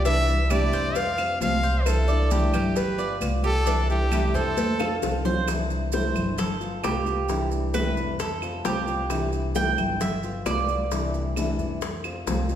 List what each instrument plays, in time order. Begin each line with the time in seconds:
Already playing: upright bass C2
0.05 nylon-string guitar C3 E3 G3 D4 E4, cuban tres D4, trumpet E5, cowbell, high conga, maracas
0.28 nylon-string guitar G3 D4 E4, high conga, maracas
0.50 nylon-string guitar C3 E3 G3 D4 E4, cuban tres G4, trumpet D5, cowbell, high conga, claves, maracas
0.73 upright bass F2, cuban tres C5, cowbell, high conga, maracas
0.95 trumpet F5, muted nylon-string guitar stroke, cowbell, high conga, maracas
1.18 nylon-string guitar G3 C4 F4, cuban tres F5, high conga, claves, maracas
1.40 upright bass C2, nylon-string guitar F3 G3 C4 F4, trumpet F5, cowbell, high conga, maracas
1.63 nylon-string guitar G3 C4 F4, cuban tres C5, high conga, maracas
1.85 nylon-string guitar C3 E3 G3 D4 E4, trumpet A4, cowbell, high conga, claves, maracas
2.08 nylon-string guitar G3 D4 E4, cuban tres D5, high conga, maracas
2.31 nylon-string guitar C3 E3 G3 D4 E4, trumpet G4, cowbell, high conga, maracas
2.53 upright bass G1, cuban tres G4, cowbell, high conga, low conga, claves, maracas
2.76 trumpet B4, muted nylon-string guitar stroke, cowbell, high conga, maracas
2.98 nylon-string guitar B3 F4, cuban tres D5, high conga, maracas
3.20 upright bass C2, nylon-string guitar G3 B3 F4, cowbell, high conga, claves, maracas
3.43 nylon-string guitar B3 F4, cuban tres G4, trumpet A4, high conga, maracas
3.65 nylon-string guitar C3 E3 G3 D4 E4, cuban tres D4, cowbell, high conga, maracas
3.89 nylon-string guitar G3 D4 E4, trumpet G4, high conga, maracas
4.11 nylon-string guitar C3 E3 G3 D4 E4, cuban tres G4, cowbell, high conga, claves, maracas
4.34 upright bass F2, trumpet A4, cuban tres C5, cowbell, high conga, maracas
4.57 muted nylon-string guitar stroke, cowbell, high conga, maracas
4.79 nylon-string guitar G3 C4 F4, cuban tres F5, high bongo, claves, maracas
5.02 upright bass C2, nylon-string guitar F3 G3 C4 F4, cowbell, high bongo, maracas
5.24 nylon-string guitar G3 C4 F4, cuban tres C5, low bongo, low conga, maracas
5.47 nylon-string guitar C3 E3 G3 D4 E4, high bongo, high conga, claves, maracas
5.70 high conga, maracas
5.92 nylon-string guitar C3 E3 G3 D4 E4, cuban tres C5, high bongo, high conga, maracas
6.15 upright bass G1, high conga, low conga, claves, maracas
6.38 cuban tres A4, muted nylon-string guitar stroke, high bongo, high conga, low conga, maracas
6.61 nylon-string guitar B3 F4, high conga, maracas
6.83 upright bass C2, nylon-string guitar G3 B3 F4, cuban tres G4, high bongo, low bongo, high conga, claves, maracas
7.06 nylon-string guitar B3 F4, high conga, maracas
7.28 nylon-string guitar C3 E3 G3 D4 E4, high bongo, high conga, maracas
7.51 high bongo, high conga, maracas
7.74 nylon-string guitar C3 E3 G3 D4 E4, cuban tres B4, high bongo, high conga, claves, maracas
7.97 upright bass F2, high bongo, high conga, maracas
8.20 cuban tres A4, muted nylon-string guitar stroke, high bongo, high conga, maracas
8.42 nylon-string guitar G3 C4 F4, high bongo, high conga, claves, maracas
8.65 upright bass C2, nylon-string guitar F3 G3 C4 F4, cuban tres G4, high bongo, low bongo, high conga, maracas
8.87 nylon-string guitar G3 C4 F4, high conga, maracas
9.10 nylon-string guitar C3 E3 G3 D4 E4, high bongo, high conga, claves, maracas
9.32 high conga, maracas
9.55 nylon-string guitar C3 E3 G3 D4 E4, cuban tres G5, high bongo, high conga, maracas
9.78 upright bass G1, high conga, low conga, claves, maracas
10.01 cuban tres E5, muted nylon-string guitar stroke, high bongo, high conga, low conga, maracas
10.23 nylon-string guitar B3 F4, high conga, maracas
10.45 upright bass C2, nylon-string guitar G3 B3 F4, cuban tres D5, high bongo, low bongo, high conga, claves, maracas
10.69 nylon-string guitar B3 F4, high conga, maracas
10.91 nylon-string guitar C3 E3 G3 D4 E4, high bongo, high conga, maracas
11.14 high bongo, high conga, maracas
11.36 nylon-string guitar C3 E3 G3 D4 E4, high bongo, high conga, claves, maracas
11.58 upright bass F2, high bongo, high conga, maracas
11.81 muted nylon-string guitar stroke, high bongo, high conga, maracas
12.04 nylon-string guitar G3 C4 F4, high bongo, high conga, claves, maracas
12.26 upright bass C2, nylon-string guitar F3 G3 C4 F4, high bongo, low bongo, high conga, maracas
12.49 nylon-string guitar G3 C4 F4, high conga, maracas